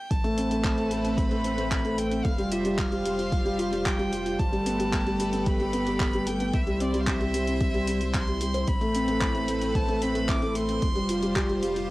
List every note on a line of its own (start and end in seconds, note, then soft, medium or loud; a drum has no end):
0.00 0.12 G5 medium
0.11 2.22 A1 medium
0.11 2.23 A3 medium
0.11 2.23 C4 medium
0.11 2.23 B4 medium
0.11 1.19 A5 loud
0.11 kick loud
0.11 closed hi-hat soft
0.24 0.37 A3 loud
0.24 closed hi-hat soft
0.38 0.50 C4 medium
0.38 closed hi-hat medium
0.51 0.64 A3 loud
0.51 closed hi-hat soft
0.64 kick loud
0.64 clap medium
0.64 closed hi-hat soft
0.78 0.90 A3 medium
0.78 closed hi-hat soft
0.91 1.04 A3 medium
0.91 closed hi-hat medium
1.05 1.12 C4 medium
1.05 closed hi-hat soft
1.18 2.00 B5 medium
1.18 kick loud
1.18 closed hi-hat soft
1.31 1.44 A3 loud
1.31 closed hi-hat soft
1.44 1.58 C4 loud
1.44 closed hi-hat medium
1.58 1.71 A3 medium
1.58 closed hi-hat soft
1.71 kick loud
1.71 clap loud
1.71 closed hi-hat soft
1.85 1.96 A3 loud
1.85 closed hi-hat soft
1.98 2.11 A3 medium
1.98 2.26 G5 medium
1.98 closed hi-hat medium
2.11 2.19 C4 medium
2.11 closed hi-hat soft
2.25 4.37 F1 medium
2.25 4.37 G3 medium
2.25 4.37 F4 medium
2.25 4.37 C5 loud
2.25 2.53 F5 medium
2.25 kick loud
2.25 closed hi-hat soft
2.38 2.51 G3 loud
2.38 closed hi-hat soft
2.52 2.65 F4 loud
2.52 2.80 E5 medium
2.52 closed hi-hat medium
2.65 2.78 G3 loud
2.65 closed hi-hat soft
2.78 3.87 F5 medium
2.78 kick loud
2.78 clap medium
2.78 closed hi-hat soft
2.92 3.04 G3 medium
2.92 closed hi-hat soft
3.05 3.18 G3 medium
3.05 closed hi-hat medium
3.19 3.26 F4 medium
3.19 closed hi-hat soft
3.32 kick loud
3.32 closed hi-hat soft
3.45 3.58 G3 loud
3.45 closed hi-hat soft
3.59 3.72 F4 loud
3.59 closed hi-hat medium
3.72 3.85 G3 medium
3.72 closed hi-hat soft
3.85 4.41 G5 medium
3.85 kick loud
3.85 clap medium
3.85 closed hi-hat soft
3.99 4.10 G3 loud
3.99 closed hi-hat soft
4.12 4.25 G3 medium
4.12 closed hi-hat medium
4.26 4.33 F4 medium
4.26 closed hi-hat soft
4.39 6.51 G1 medium
4.39 6.52 A3 medium
4.39 6.52 G4 medium
4.39 6.52 B4 loud
4.39 5.49 A5 loud
4.39 kick loud
4.39 closed hi-hat soft
4.52 4.65 G3 loud
4.52 closed hi-hat soft
4.66 4.79 B3 loud
4.66 closed hi-hat medium
4.79 4.92 G3 loud
4.79 closed hi-hat soft
4.93 kick loud
4.93 clap medium
4.93 closed hi-hat soft
5.06 5.18 G3 loud
5.06 closed hi-hat soft
5.20 5.32 G3 medium
5.20 closed hi-hat medium
5.33 5.41 B3 medium
5.33 closed hi-hat soft
5.46 6.29 B5 loud
5.46 kick loud
5.46 closed hi-hat soft
5.60 5.73 G3 loud
5.60 closed hi-hat soft
5.73 5.86 B3 loud
5.73 closed hi-hat medium
5.87 5.99 G3 medium
5.87 closed hi-hat soft
6.00 kick loud
6.00 clap medium
6.00 closed hi-hat soft
6.13 6.26 G3 loud
6.13 closed hi-hat soft
6.27 6.40 G3 medium
6.27 6.56 G5 loud
6.27 closed hi-hat medium
6.40 6.48 B3 medium
6.40 closed hi-hat soft
6.53 8.65 C2 medium
6.53 8.66 E4 medium
6.53 8.66 C5 loud
6.53 6.83 E5 medium
6.53 kick loud
6.53 closed hi-hat soft
6.67 6.80 G3 loud
6.67 closed hi-hat soft
6.80 6.93 C4 medium
6.80 7.02 D5 medium
6.80 closed hi-hat medium
6.94 7.06 G3 loud
6.94 closed hi-hat soft
7.01 7.09 F5 medium
7.07 8.16 E5 loud
7.07 kick loud
7.07 clap medium
7.07 closed hi-hat soft
7.20 7.32 G3 medium
7.20 closed hi-hat soft
7.34 7.47 G3 medium
7.34 closed hi-hat medium
7.47 7.55 C4 medium
7.47 closed hi-hat soft
7.61 kick loud
7.61 closed hi-hat soft
7.74 7.86 G3 loud
7.74 closed hi-hat soft
7.87 7.95 G3 loud
7.87 closed hi-hat medium
8.01 8.14 G3 medium
8.01 closed hi-hat soft
8.14 8.70 C6 loud
8.14 kick loud
8.14 clap loud
8.14 closed hi-hat soft
8.27 8.35 G3 medium
8.27 closed hi-hat soft
8.41 8.49 G3 medium
8.41 closed hi-hat medium
8.54 8.67 C5 medium
8.54 closed hi-hat soft
8.68 10.80 A1 medium
8.68 10.80 A3 medium
8.68 10.80 C4 medium
8.68 10.80 B4 loud
8.68 9.77 B5 loud
8.68 kick loud
8.68 closed hi-hat soft
8.81 8.94 A3 loud
8.81 closed hi-hat soft
8.95 9.08 C4 loud
8.95 closed hi-hat medium
9.08 9.21 A3 loud
9.08 closed hi-hat soft
9.21 9.29 E4 loud
9.21 kick loud
9.21 clap medium
9.21 closed hi-hat soft
9.35 9.47 A3 medium
9.35 closed hi-hat soft
9.48 9.61 A3 medium
9.48 closed hi-hat medium
9.62 9.69 C4 medium
9.62 closed hi-hat soft
9.75 10.04 A5 loud
9.75 kick loud
9.75 closed hi-hat soft
9.89 10.01 A3 loud
9.89 closed hi-hat soft
10.02 10.15 C4 loud
10.02 10.31 B5 loud
10.02 closed hi-hat medium
10.15 10.28 A3 loud
10.15 closed hi-hat soft
10.29 10.36 E4 loud
10.29 10.58 D6 loud
10.29 kick loud
10.29 clap medium
10.29 closed hi-hat soft
10.42 10.54 A3 loud
10.42 closed hi-hat soft
10.55 10.68 A3 medium
10.55 11.63 C6 loud
10.55 closed hi-hat medium
10.69 10.77 C4 medium
10.69 closed hi-hat soft
10.82 11.90 F1 medium
10.82 11.90 G3 medium
10.82 11.90 F4 medium
10.82 11.90 C5 loud
10.82 kick loud
10.82 closed hi-hat soft
10.95 11.08 G3 loud
10.95 closed hi-hat soft
11.09 11.22 F4 loud
11.09 closed hi-hat medium
11.23 11.35 G3 loud
11.23 closed hi-hat soft
11.36 11.43 G4 loud
11.36 kick loud
11.36 clap medium
11.36 closed hi-hat soft
11.49 11.61 G3 loud
11.49 closed hi-hat soft
11.62 11.75 G3 medium
11.62 closed hi-hat medium
11.76 11.84 F4 medium
11.76 closed hi-hat soft